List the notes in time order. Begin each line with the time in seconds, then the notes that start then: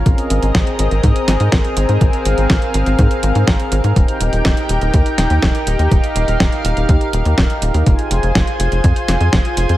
Already playing: A#4
0.06 G#1 C4 G#4 D#5, kick, closed hi-hat
0.18 closed hi-hat
0.30 G#1, closed hi-hat
0.43 G#1, closed hi-hat
0.55 G#1, kick, snare, closed hi-hat
0.67 closed hi-hat
0.79 G#1, closed hi-hat
0.91 G#1, closed hi-hat
1.04 G#2, kick, closed hi-hat
1.16 closed hi-hat
1.28 G#1, snare, closed hi-hat
1.40 G#2, closed hi-hat
1.52 G#1, kick, snare, closed hi-hat
1.65 closed hi-hat
1.77 G#1, closed hi-hat
1.89 G#2, closed hi-hat
2.01 G#1 F5, kick, closed hi-hat
2.13 closed hi-hat
2.25 G#1, closed hi-hat
2.38 G#1, closed hi-hat
2.50 G#1, kick, snare, closed hi-hat
2.62 closed hi-hat
2.74 G#1, closed hi-hat
2.86 G#1, closed hi-hat
2.99 G#2, kick, closed hi-hat
3.11 closed hi-hat
3.23 G#1, closed hi-hat
3.35 G#2, closed hi-hat
3.47 G#1, kick, snare, closed hi-hat
3.60 closed hi-hat
3.72 G#1, closed hi-hat
3.84 G#2, closed hi-hat
3.96 D#1 D#4 G4 G5, kick, closed hi-hat
4.08 closed hi-hat
4.21 D#1, closed hi-hat
4.33 D#1, closed hi-hat
4.45 D#1, kick, snare, closed hi-hat
4.57 closed hi-hat
4.69 D#1, closed hi-hat
4.81 D#1, closed hi-hat
4.94 D#2, kick, closed hi-hat
5.06 closed hi-hat
5.18 D#1, snare, closed hi-hat
5.30 D#2, closed hi-hat
5.42 D#1, kick, snare, closed hi-hat
5.55 closed hi-hat
5.67 D#1, closed hi-hat
5.79 D#2, closed hi-hat
5.91 D#1 F5, kick, closed hi-hat
6.04 closed hi-hat
6.16 D#1, closed hi-hat
6.28 D#1, closed hi-hat
6.40 D#1, kick, snare, closed hi-hat
6.52 closed hi-hat
6.64 D#1, closed hi-hat
6.77 D#1, closed hi-hat
6.89 D#2, kick, closed hi-hat
7.01 closed hi-hat
7.13 D#1, closed hi-hat
7.25 D#2, closed hi-hat
7.38 D#1, kick, snare, closed hi-hat
7.50 closed hi-hat
7.62 D#1, closed hi-hat
7.74 D#2, closed hi-hat
7.86 F1 F4 G#4 C5 G#5, kick, closed hi-hat
7.99 closed hi-hat
8.11 F1, closed hi-hat
8.23 F1, closed hi-hat
8.35 F1, kick, snare, closed hi-hat
8.47 closed hi-hat
8.60 F1, closed hi-hat
8.72 F1, closed hi-hat
8.84 F2, kick, closed hi-hat
8.96 closed hi-hat
9.08 F1, snare, closed hi-hat
9.20 F2, closed hi-hat
9.33 F1, kick, snare, closed hi-hat
9.45 closed hi-hat
9.57 F1, closed hi-hat
9.69 F2, closed hi-hat